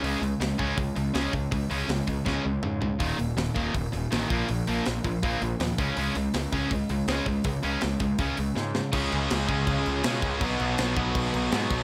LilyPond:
<<
  \new Staff \with { instrumentName = "Overdriven electric guitar" } { \time 4/4 \key des \mixolydian \tempo 4 = 162 r1 | r1 | r1 | r1 |
r1 | r1 | <des aes des' f' aes'>4. <des aes des' f' aes'>4. <des aes des' f' aes'>4 | <b, fis b dis' fis'>4. <b, fis b dis' fis'>4. <b, fis b dis' fis'>4 | }
  \new Staff \with { instrumentName = "Distorted electric guitar" } { \clef bass \time 4/4 \key des \mixolydian <des aes des'>8 <des aes>8 <des aes>8 <des aes des'>8 <des aes>8 <des aes>8 <des aes des'>8 <des aes>8 | <des aes>8 <des aes des'>8 <des aes>8 <des aes>8 <des aes des'>8 <des aes>8 <des aes>8 <des aes>8 | <ees, bes, ees>8 <ees, bes,>8 <ees, bes,>8 <ees, bes, ees>8 <ees, bes,>8 <ees, bes,>8 <ees, bes, ees>8 <bes, f bes>8 | <bes, f>8 <bes, f bes>8 <bes, f>8 <bes, f>8 <bes, f bes>8 <bes, f>8 <bes, f>8 <des aes des'>8 |
<des aes des'>8 <des aes>8 <des aes>8 <des aes des'>8 <des aes>8 <des aes>8 <des aes des'>8 <des aes>8 | <des aes>8 <des aes des'>8 <des aes>8 <des aes>8 <des aes des'>8 <des aes>8 <des aes>8 <des aes>8 | <des aes des'>4. <des aes des'>4. <des aes des'>4 | <b, fis b>4. <b, fis b>4. <b, fis b>4 | }
  \new Staff \with { instrumentName = "Distorted electric guitar" } { \clef bass \time 4/4 \key des \mixolydian <des aes des'>8 <des aes>8 <des aes>8 <des aes des'>8 <des aes>8 <des aes>8 <des aes des'>8 <des aes>8 | <des aes>8 <des aes des'>8 <des aes>8 <des aes>8 <des aes des'>8 <des aes>8 <des aes>8 <des aes>8 | <ees, bes, ees>8 <ees, bes,>8 <ees, bes,>8 <ees, bes, ees>8 <ees, bes,>8 <ees, bes,>8 <ees, bes, ees>8 <bes, f bes>8 | <bes, f>8 <bes, f bes>8 <bes, f>8 <bes, f>8 <bes, f bes>8 <bes, f>8 <bes, f>8 <des aes des'>8 |
<des aes des'>8 <des aes>8 <des aes>8 <des aes des'>8 <des aes>8 <des aes>8 <des aes des'>8 <des aes>8 | <des aes>8 <des aes des'>8 <des aes>8 <des aes>8 <des aes des'>8 <des aes>8 <des aes>8 <des aes>8 | <des aes des'>1 | <b, fis b>1 | }
  \new Staff \with { instrumentName = "Picked electric bass" } { \clef bass \time 4/4 \key des \mixolydian des,8 des,8 des,8 des,8 des,8 des,8 des,8 des,8 | des,8 des,8 des,8 des,8 des,8 des,8 aes,4 | ees,,8 ees,,8 ees,,8 ees,,8 ees,,8 ees,,8 a,,8 bes,,8 | bes,,8 bes,,8 bes,,8 bes,,8 bes,,8 bes,,8 ees,8 des,8 |
des,8 des,8 des,8 des,8 des,8 des,8 des,8 des,8 | des,8 des,8 des,8 des,8 des,8 des,8 aes,4 | des,8 des,8 des,8 des,8 des,8 des,8 ces8 des,8 | b,,8 b,,8 b,,8 b,,8 b,,8 b,,8 aes,8 b,,8 | }
  \new DrumStaff \with { instrumentName = "Drums" } \drummode { \time 4/4 hho8 hho8 <hho sn>8 <hho bd>8 <hho bd>8 hho8 <hho sn>8 <hho bd>8 | <hho bd>8 hho8 <hho sn>8 <hho bd>8 <bd sn>4 toml8 tomfh8 | <hho bd>8 hho8 <hho sn>8 <hho bd>8 <hho bd>8 hho8 <hho sn>8 <hho bd>8 | hho8 hho8 <hho sn>8 <hho bd>8 <hho bd>8 hho8 <hho sn>8 <hho bd>8 |
hho8 hho8 <hho sn>8 <hho bd>8 <hho bd>8 hho8 <hho sn>8 <hho bd>8 | <hho bd>8 hho8 <hho sn>8 <hho bd>8 <hho bd>8 hho8 sn8 sn8 | <cymc bd>8 cymc8 <cymc sn>8 <cymc bd>8 <cymc bd>8 cymc8 <cymc sn>8 <cymc bd>8 | <cymc bd>8 cymc8 <cymc sn>8 <cymc bd>8 <cymc bd>8 cymc8 <cymc sn>8 <cymc bd>8 | }
>>